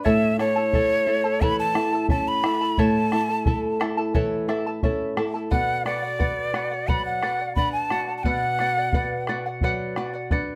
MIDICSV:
0, 0, Header, 1, 5, 480
1, 0, Start_track
1, 0, Key_signature, 2, "minor"
1, 0, Tempo, 683371
1, 38, Time_signature, 4, 2, 24, 8
1, 7412, End_track
2, 0, Start_track
2, 0, Title_t, "Quena"
2, 0, Program_c, 0, 77
2, 33, Note_on_c, 0, 76, 98
2, 258, Note_off_c, 0, 76, 0
2, 277, Note_on_c, 0, 73, 105
2, 995, Note_on_c, 0, 83, 99
2, 1006, Note_off_c, 0, 73, 0
2, 1115, Note_off_c, 0, 83, 0
2, 1118, Note_on_c, 0, 81, 93
2, 1450, Note_off_c, 0, 81, 0
2, 1480, Note_on_c, 0, 81, 93
2, 1601, Note_on_c, 0, 83, 86
2, 1612, Note_off_c, 0, 81, 0
2, 1961, Note_on_c, 0, 81, 98
2, 1972, Note_off_c, 0, 83, 0
2, 2676, Note_off_c, 0, 81, 0
2, 3874, Note_on_c, 0, 78, 91
2, 4096, Note_off_c, 0, 78, 0
2, 4111, Note_on_c, 0, 74, 90
2, 4832, Note_on_c, 0, 83, 82
2, 4843, Note_off_c, 0, 74, 0
2, 4949, Note_off_c, 0, 83, 0
2, 4954, Note_on_c, 0, 78, 88
2, 5288, Note_off_c, 0, 78, 0
2, 5305, Note_on_c, 0, 83, 93
2, 5421, Note_off_c, 0, 83, 0
2, 5425, Note_on_c, 0, 81, 87
2, 5718, Note_off_c, 0, 81, 0
2, 5743, Note_on_c, 0, 81, 58
2, 5783, Note_on_c, 0, 78, 96
2, 5794, Note_off_c, 0, 81, 0
2, 6511, Note_off_c, 0, 78, 0
2, 7412, End_track
3, 0, Start_track
3, 0, Title_t, "Charango"
3, 0, Program_c, 1, 24
3, 32, Note_on_c, 1, 73, 73
3, 35, Note_on_c, 1, 76, 67
3, 36, Note_on_c, 1, 64, 77
3, 39, Note_on_c, 1, 81, 86
3, 40, Note_on_c, 1, 69, 87
3, 267, Note_off_c, 1, 76, 0
3, 271, Note_off_c, 1, 64, 0
3, 273, Note_off_c, 1, 69, 0
3, 274, Note_off_c, 1, 73, 0
3, 275, Note_on_c, 1, 76, 56
3, 278, Note_off_c, 1, 81, 0
3, 279, Note_on_c, 1, 64, 62
3, 281, Note_on_c, 1, 69, 53
3, 286, Note_on_c, 1, 81, 62
3, 383, Note_off_c, 1, 81, 0
3, 391, Note_off_c, 1, 69, 0
3, 392, Note_on_c, 1, 81, 62
3, 395, Note_off_c, 1, 64, 0
3, 396, Note_off_c, 1, 76, 0
3, 400, Note_on_c, 1, 69, 51
3, 403, Note_on_c, 1, 64, 42
3, 514, Note_off_c, 1, 64, 0
3, 514, Note_off_c, 1, 81, 0
3, 516, Note_off_c, 1, 69, 0
3, 518, Note_on_c, 1, 76, 60
3, 523, Note_on_c, 1, 64, 65
3, 524, Note_on_c, 1, 69, 69
3, 527, Note_on_c, 1, 81, 64
3, 739, Note_off_c, 1, 76, 0
3, 745, Note_off_c, 1, 64, 0
3, 747, Note_on_c, 1, 76, 61
3, 749, Note_off_c, 1, 69, 0
3, 749, Note_off_c, 1, 81, 0
3, 754, Note_on_c, 1, 64, 62
3, 758, Note_on_c, 1, 69, 66
3, 758, Note_on_c, 1, 81, 61
3, 863, Note_off_c, 1, 81, 0
3, 867, Note_off_c, 1, 69, 0
3, 871, Note_off_c, 1, 64, 0
3, 871, Note_off_c, 1, 76, 0
3, 871, Note_on_c, 1, 81, 55
3, 875, Note_on_c, 1, 69, 53
3, 880, Note_on_c, 1, 64, 43
3, 986, Note_off_c, 1, 64, 0
3, 991, Note_off_c, 1, 69, 0
3, 993, Note_off_c, 1, 81, 0
3, 993, Note_on_c, 1, 73, 80
3, 994, Note_on_c, 1, 76, 71
3, 995, Note_on_c, 1, 64, 76
3, 999, Note_on_c, 1, 69, 73
3, 1000, Note_on_c, 1, 81, 84
3, 1224, Note_off_c, 1, 76, 0
3, 1226, Note_off_c, 1, 69, 0
3, 1227, Note_off_c, 1, 64, 0
3, 1231, Note_off_c, 1, 81, 0
3, 1232, Note_on_c, 1, 76, 58
3, 1233, Note_off_c, 1, 73, 0
3, 1235, Note_on_c, 1, 69, 63
3, 1236, Note_on_c, 1, 64, 52
3, 1240, Note_on_c, 1, 81, 62
3, 1348, Note_off_c, 1, 81, 0
3, 1353, Note_off_c, 1, 76, 0
3, 1354, Note_off_c, 1, 69, 0
3, 1355, Note_off_c, 1, 64, 0
3, 1356, Note_on_c, 1, 81, 52
3, 1362, Note_on_c, 1, 69, 46
3, 1366, Note_on_c, 1, 64, 41
3, 1472, Note_off_c, 1, 64, 0
3, 1474, Note_off_c, 1, 69, 0
3, 1474, Note_on_c, 1, 76, 60
3, 1475, Note_off_c, 1, 81, 0
3, 1480, Note_on_c, 1, 64, 58
3, 1482, Note_on_c, 1, 69, 62
3, 1485, Note_on_c, 1, 81, 68
3, 1705, Note_off_c, 1, 76, 0
3, 1709, Note_off_c, 1, 64, 0
3, 1713, Note_on_c, 1, 76, 55
3, 1714, Note_off_c, 1, 69, 0
3, 1717, Note_on_c, 1, 64, 57
3, 1719, Note_off_c, 1, 81, 0
3, 1722, Note_on_c, 1, 69, 57
3, 1727, Note_on_c, 1, 81, 58
3, 1824, Note_off_c, 1, 81, 0
3, 1832, Note_off_c, 1, 69, 0
3, 1833, Note_off_c, 1, 76, 0
3, 1833, Note_on_c, 1, 81, 47
3, 1835, Note_off_c, 1, 64, 0
3, 1840, Note_on_c, 1, 69, 43
3, 1845, Note_on_c, 1, 64, 37
3, 1951, Note_off_c, 1, 69, 0
3, 1952, Note_off_c, 1, 64, 0
3, 1953, Note_off_c, 1, 81, 0
3, 1957, Note_on_c, 1, 73, 79
3, 1958, Note_on_c, 1, 76, 75
3, 1959, Note_on_c, 1, 69, 85
3, 1960, Note_on_c, 1, 64, 72
3, 1962, Note_on_c, 1, 81, 85
3, 2184, Note_off_c, 1, 76, 0
3, 2187, Note_off_c, 1, 64, 0
3, 2188, Note_off_c, 1, 69, 0
3, 2192, Note_off_c, 1, 81, 0
3, 2192, Note_on_c, 1, 76, 55
3, 2194, Note_off_c, 1, 73, 0
3, 2195, Note_on_c, 1, 64, 56
3, 2197, Note_on_c, 1, 69, 59
3, 2200, Note_on_c, 1, 81, 58
3, 2303, Note_off_c, 1, 81, 0
3, 2307, Note_off_c, 1, 69, 0
3, 2311, Note_off_c, 1, 64, 0
3, 2311, Note_on_c, 1, 81, 57
3, 2312, Note_off_c, 1, 76, 0
3, 2315, Note_on_c, 1, 69, 45
3, 2320, Note_on_c, 1, 64, 38
3, 2428, Note_off_c, 1, 64, 0
3, 2432, Note_off_c, 1, 81, 0
3, 2434, Note_off_c, 1, 69, 0
3, 2436, Note_on_c, 1, 64, 58
3, 2436, Note_on_c, 1, 76, 60
3, 2441, Note_on_c, 1, 69, 69
3, 2441, Note_on_c, 1, 81, 69
3, 2659, Note_off_c, 1, 76, 0
3, 2666, Note_off_c, 1, 64, 0
3, 2668, Note_on_c, 1, 76, 63
3, 2669, Note_off_c, 1, 69, 0
3, 2672, Note_off_c, 1, 81, 0
3, 2674, Note_on_c, 1, 64, 69
3, 2677, Note_on_c, 1, 69, 74
3, 2680, Note_on_c, 1, 81, 78
3, 2783, Note_off_c, 1, 81, 0
3, 2790, Note_off_c, 1, 69, 0
3, 2790, Note_off_c, 1, 76, 0
3, 2791, Note_on_c, 1, 81, 62
3, 2793, Note_off_c, 1, 64, 0
3, 2798, Note_on_c, 1, 69, 55
3, 2800, Note_on_c, 1, 64, 46
3, 2906, Note_off_c, 1, 69, 0
3, 2907, Note_off_c, 1, 64, 0
3, 2911, Note_off_c, 1, 81, 0
3, 2912, Note_on_c, 1, 73, 80
3, 2913, Note_on_c, 1, 76, 81
3, 2914, Note_on_c, 1, 69, 81
3, 2915, Note_on_c, 1, 64, 85
3, 2919, Note_on_c, 1, 81, 92
3, 3142, Note_off_c, 1, 76, 0
3, 3145, Note_off_c, 1, 64, 0
3, 3147, Note_off_c, 1, 69, 0
3, 3151, Note_off_c, 1, 81, 0
3, 3151, Note_on_c, 1, 76, 67
3, 3152, Note_off_c, 1, 73, 0
3, 3153, Note_on_c, 1, 64, 63
3, 3156, Note_on_c, 1, 69, 69
3, 3159, Note_on_c, 1, 81, 74
3, 3269, Note_off_c, 1, 81, 0
3, 3271, Note_off_c, 1, 76, 0
3, 3272, Note_off_c, 1, 64, 0
3, 3274, Note_off_c, 1, 69, 0
3, 3277, Note_on_c, 1, 81, 58
3, 3282, Note_on_c, 1, 69, 48
3, 3288, Note_on_c, 1, 64, 39
3, 3391, Note_off_c, 1, 64, 0
3, 3394, Note_off_c, 1, 81, 0
3, 3396, Note_on_c, 1, 76, 55
3, 3397, Note_off_c, 1, 69, 0
3, 3399, Note_on_c, 1, 64, 67
3, 3405, Note_on_c, 1, 69, 60
3, 3408, Note_on_c, 1, 81, 61
3, 3622, Note_off_c, 1, 76, 0
3, 3626, Note_off_c, 1, 64, 0
3, 3629, Note_off_c, 1, 69, 0
3, 3630, Note_on_c, 1, 76, 56
3, 3631, Note_off_c, 1, 81, 0
3, 3635, Note_on_c, 1, 64, 67
3, 3637, Note_on_c, 1, 69, 67
3, 3639, Note_on_c, 1, 81, 61
3, 3743, Note_off_c, 1, 81, 0
3, 3750, Note_off_c, 1, 69, 0
3, 3751, Note_off_c, 1, 76, 0
3, 3751, Note_on_c, 1, 81, 40
3, 3753, Note_off_c, 1, 64, 0
3, 3758, Note_on_c, 1, 69, 39
3, 3763, Note_on_c, 1, 64, 38
3, 3867, Note_off_c, 1, 64, 0
3, 3870, Note_on_c, 1, 71, 74
3, 3871, Note_off_c, 1, 81, 0
3, 3873, Note_on_c, 1, 74, 84
3, 3874, Note_on_c, 1, 78, 83
3, 3875, Note_off_c, 1, 69, 0
3, 4111, Note_off_c, 1, 71, 0
3, 4112, Note_off_c, 1, 74, 0
3, 4113, Note_off_c, 1, 78, 0
3, 4119, Note_on_c, 1, 71, 56
3, 4120, Note_on_c, 1, 74, 62
3, 4128, Note_on_c, 1, 78, 62
3, 4221, Note_off_c, 1, 78, 0
3, 4230, Note_on_c, 1, 78, 57
3, 4232, Note_off_c, 1, 74, 0
3, 4235, Note_off_c, 1, 71, 0
3, 4240, Note_on_c, 1, 74, 42
3, 4344, Note_off_c, 1, 74, 0
3, 4347, Note_on_c, 1, 71, 51
3, 4349, Note_off_c, 1, 78, 0
3, 4352, Note_on_c, 1, 74, 61
3, 4358, Note_on_c, 1, 78, 70
3, 4586, Note_off_c, 1, 71, 0
3, 4589, Note_off_c, 1, 74, 0
3, 4594, Note_on_c, 1, 71, 63
3, 4595, Note_off_c, 1, 78, 0
3, 4598, Note_on_c, 1, 74, 57
3, 4603, Note_on_c, 1, 78, 69
3, 4708, Note_off_c, 1, 78, 0
3, 4713, Note_off_c, 1, 71, 0
3, 4715, Note_off_c, 1, 74, 0
3, 4716, Note_on_c, 1, 78, 52
3, 4727, Note_on_c, 1, 74, 48
3, 4829, Note_off_c, 1, 74, 0
3, 4834, Note_off_c, 1, 78, 0
3, 4835, Note_on_c, 1, 71, 69
3, 4838, Note_on_c, 1, 74, 70
3, 4842, Note_on_c, 1, 78, 81
3, 5067, Note_off_c, 1, 71, 0
3, 5071, Note_off_c, 1, 74, 0
3, 5076, Note_on_c, 1, 71, 56
3, 5078, Note_off_c, 1, 78, 0
3, 5079, Note_on_c, 1, 74, 62
3, 5087, Note_on_c, 1, 78, 60
3, 5184, Note_off_c, 1, 78, 0
3, 5192, Note_on_c, 1, 78, 48
3, 5193, Note_off_c, 1, 74, 0
3, 5194, Note_off_c, 1, 71, 0
3, 5202, Note_on_c, 1, 74, 43
3, 5313, Note_off_c, 1, 78, 0
3, 5316, Note_off_c, 1, 74, 0
3, 5319, Note_on_c, 1, 71, 48
3, 5325, Note_on_c, 1, 74, 55
3, 5330, Note_on_c, 1, 78, 64
3, 5545, Note_off_c, 1, 71, 0
3, 5550, Note_off_c, 1, 74, 0
3, 5553, Note_off_c, 1, 78, 0
3, 5553, Note_on_c, 1, 71, 55
3, 5558, Note_on_c, 1, 74, 61
3, 5562, Note_on_c, 1, 78, 71
3, 5669, Note_off_c, 1, 78, 0
3, 5674, Note_off_c, 1, 71, 0
3, 5676, Note_off_c, 1, 74, 0
3, 5678, Note_on_c, 1, 78, 44
3, 5685, Note_on_c, 1, 74, 39
3, 5790, Note_off_c, 1, 74, 0
3, 5791, Note_off_c, 1, 78, 0
3, 5794, Note_on_c, 1, 71, 71
3, 5798, Note_on_c, 1, 74, 67
3, 5799, Note_on_c, 1, 78, 90
3, 6031, Note_off_c, 1, 71, 0
3, 6033, Note_off_c, 1, 74, 0
3, 6037, Note_off_c, 1, 78, 0
3, 6039, Note_on_c, 1, 71, 52
3, 6041, Note_on_c, 1, 74, 54
3, 6049, Note_on_c, 1, 78, 69
3, 6149, Note_off_c, 1, 78, 0
3, 6157, Note_off_c, 1, 71, 0
3, 6157, Note_on_c, 1, 78, 55
3, 6158, Note_off_c, 1, 74, 0
3, 6168, Note_on_c, 1, 74, 45
3, 6273, Note_off_c, 1, 74, 0
3, 6276, Note_off_c, 1, 78, 0
3, 6278, Note_on_c, 1, 71, 56
3, 6282, Note_on_c, 1, 74, 70
3, 6286, Note_on_c, 1, 78, 68
3, 6511, Note_off_c, 1, 71, 0
3, 6516, Note_off_c, 1, 74, 0
3, 6520, Note_on_c, 1, 71, 71
3, 6522, Note_off_c, 1, 78, 0
3, 6525, Note_on_c, 1, 74, 74
3, 6529, Note_on_c, 1, 78, 67
3, 6635, Note_off_c, 1, 78, 0
3, 6638, Note_off_c, 1, 71, 0
3, 6641, Note_off_c, 1, 74, 0
3, 6644, Note_on_c, 1, 78, 65
3, 6651, Note_on_c, 1, 74, 45
3, 6760, Note_off_c, 1, 78, 0
3, 6762, Note_off_c, 1, 74, 0
3, 6768, Note_on_c, 1, 71, 79
3, 6771, Note_on_c, 1, 74, 84
3, 6773, Note_on_c, 1, 78, 98
3, 6994, Note_off_c, 1, 71, 0
3, 6997, Note_off_c, 1, 74, 0
3, 7002, Note_off_c, 1, 78, 0
3, 7002, Note_on_c, 1, 71, 65
3, 7006, Note_on_c, 1, 74, 68
3, 7010, Note_on_c, 1, 78, 72
3, 7110, Note_off_c, 1, 78, 0
3, 7119, Note_off_c, 1, 74, 0
3, 7119, Note_on_c, 1, 78, 55
3, 7120, Note_off_c, 1, 71, 0
3, 7127, Note_on_c, 1, 74, 44
3, 7239, Note_off_c, 1, 74, 0
3, 7239, Note_off_c, 1, 78, 0
3, 7242, Note_on_c, 1, 71, 65
3, 7247, Note_on_c, 1, 74, 75
3, 7252, Note_on_c, 1, 78, 71
3, 7412, Note_off_c, 1, 71, 0
3, 7412, Note_off_c, 1, 74, 0
3, 7412, Note_off_c, 1, 78, 0
3, 7412, End_track
4, 0, Start_track
4, 0, Title_t, "Nylon-string guitar"
4, 0, Program_c, 2, 24
4, 37, Note_on_c, 2, 45, 68
4, 277, Note_on_c, 2, 64, 50
4, 509, Note_off_c, 2, 64, 0
4, 518, Note_on_c, 2, 69, 60
4, 748, Note_off_c, 2, 69, 0
4, 751, Note_on_c, 2, 64, 56
4, 985, Note_off_c, 2, 64, 0
4, 997, Note_on_c, 2, 52, 55
4, 1228, Note_off_c, 2, 52, 0
4, 1229, Note_on_c, 2, 64, 56
4, 1464, Note_off_c, 2, 64, 0
4, 1470, Note_on_c, 2, 61, 51
4, 1704, Note_off_c, 2, 61, 0
4, 1711, Note_on_c, 2, 64, 56
4, 1924, Note_off_c, 2, 45, 0
4, 1944, Note_off_c, 2, 64, 0
4, 1949, Note_on_c, 2, 45, 63
4, 2197, Note_on_c, 2, 64, 50
4, 2427, Note_off_c, 2, 64, 0
4, 2435, Note_on_c, 2, 69, 60
4, 2666, Note_off_c, 2, 69, 0
4, 2677, Note_on_c, 2, 64, 49
4, 2907, Note_off_c, 2, 64, 0
4, 2909, Note_on_c, 2, 52, 49
4, 3143, Note_off_c, 2, 52, 0
4, 3148, Note_on_c, 2, 64, 56
4, 3152, Note_on_c, 2, 76, 68
4, 3374, Note_off_c, 2, 76, 0
4, 3383, Note_off_c, 2, 64, 0
4, 3395, Note_on_c, 2, 61, 51
4, 3395, Note_on_c, 2, 73, 65
4, 3616, Note_off_c, 2, 73, 0
4, 3626, Note_off_c, 2, 61, 0
4, 3633, Note_on_c, 2, 64, 56
4, 3633, Note_on_c, 2, 69, 64
4, 3842, Note_off_c, 2, 45, 0
4, 3855, Note_off_c, 2, 69, 0
4, 3866, Note_off_c, 2, 64, 0
4, 3875, Note_on_c, 2, 47, 60
4, 4111, Note_on_c, 2, 66, 51
4, 4344, Note_off_c, 2, 66, 0
4, 4352, Note_on_c, 2, 71, 61
4, 4585, Note_off_c, 2, 71, 0
4, 4590, Note_on_c, 2, 66, 50
4, 4824, Note_off_c, 2, 66, 0
4, 4833, Note_on_c, 2, 54, 49
4, 5066, Note_off_c, 2, 54, 0
4, 5078, Note_on_c, 2, 66, 53
4, 5308, Note_off_c, 2, 66, 0
4, 5315, Note_on_c, 2, 62, 50
4, 5547, Note_off_c, 2, 62, 0
4, 5555, Note_on_c, 2, 66, 55
4, 5768, Note_off_c, 2, 47, 0
4, 5788, Note_off_c, 2, 66, 0
4, 5798, Note_on_c, 2, 47, 67
4, 6040, Note_on_c, 2, 66, 48
4, 6271, Note_off_c, 2, 66, 0
4, 6281, Note_on_c, 2, 71, 61
4, 6512, Note_off_c, 2, 71, 0
4, 6525, Note_on_c, 2, 66, 52
4, 6754, Note_off_c, 2, 66, 0
4, 6762, Note_on_c, 2, 54, 50
4, 6993, Note_off_c, 2, 54, 0
4, 7004, Note_on_c, 2, 66, 59
4, 7235, Note_off_c, 2, 66, 0
4, 7245, Note_on_c, 2, 62, 52
4, 7412, Note_off_c, 2, 47, 0
4, 7412, Note_off_c, 2, 62, 0
4, 7412, End_track
5, 0, Start_track
5, 0, Title_t, "Bombo"
5, 39, Note_on_c, 9, 43, 55
5, 110, Note_off_c, 9, 43, 0
5, 277, Note_on_c, 9, 37, 41
5, 347, Note_off_c, 9, 37, 0
5, 515, Note_on_c, 9, 43, 62
5, 585, Note_off_c, 9, 43, 0
5, 992, Note_on_c, 9, 43, 75
5, 1063, Note_off_c, 9, 43, 0
5, 1231, Note_on_c, 9, 37, 54
5, 1301, Note_off_c, 9, 37, 0
5, 1465, Note_on_c, 9, 43, 74
5, 1536, Note_off_c, 9, 43, 0
5, 1712, Note_on_c, 9, 37, 61
5, 1782, Note_off_c, 9, 37, 0
5, 1950, Note_on_c, 9, 43, 69
5, 2021, Note_off_c, 9, 43, 0
5, 2192, Note_on_c, 9, 37, 49
5, 2262, Note_off_c, 9, 37, 0
5, 2429, Note_on_c, 9, 43, 78
5, 2499, Note_off_c, 9, 43, 0
5, 2675, Note_on_c, 9, 37, 64
5, 2745, Note_off_c, 9, 37, 0
5, 2913, Note_on_c, 9, 43, 76
5, 2983, Note_off_c, 9, 43, 0
5, 3153, Note_on_c, 9, 37, 48
5, 3223, Note_off_c, 9, 37, 0
5, 3391, Note_on_c, 9, 43, 71
5, 3461, Note_off_c, 9, 43, 0
5, 3633, Note_on_c, 9, 37, 53
5, 3703, Note_off_c, 9, 37, 0
5, 3874, Note_on_c, 9, 43, 73
5, 3944, Note_off_c, 9, 43, 0
5, 4116, Note_on_c, 9, 37, 47
5, 4186, Note_off_c, 9, 37, 0
5, 4356, Note_on_c, 9, 43, 66
5, 4426, Note_off_c, 9, 43, 0
5, 4595, Note_on_c, 9, 37, 50
5, 4665, Note_off_c, 9, 37, 0
5, 4837, Note_on_c, 9, 43, 68
5, 4907, Note_off_c, 9, 43, 0
5, 5075, Note_on_c, 9, 37, 48
5, 5145, Note_off_c, 9, 37, 0
5, 5313, Note_on_c, 9, 43, 61
5, 5383, Note_off_c, 9, 43, 0
5, 5552, Note_on_c, 9, 37, 44
5, 5622, Note_off_c, 9, 37, 0
5, 5790, Note_on_c, 9, 43, 61
5, 5860, Note_off_c, 9, 43, 0
5, 6032, Note_on_c, 9, 37, 39
5, 6103, Note_off_c, 9, 37, 0
5, 6270, Note_on_c, 9, 43, 70
5, 6340, Note_off_c, 9, 43, 0
5, 6513, Note_on_c, 9, 37, 49
5, 6583, Note_off_c, 9, 37, 0
5, 6750, Note_on_c, 9, 43, 64
5, 6821, Note_off_c, 9, 43, 0
5, 6998, Note_on_c, 9, 37, 49
5, 7068, Note_off_c, 9, 37, 0
5, 7239, Note_on_c, 9, 43, 71
5, 7310, Note_off_c, 9, 43, 0
5, 7412, End_track
0, 0, End_of_file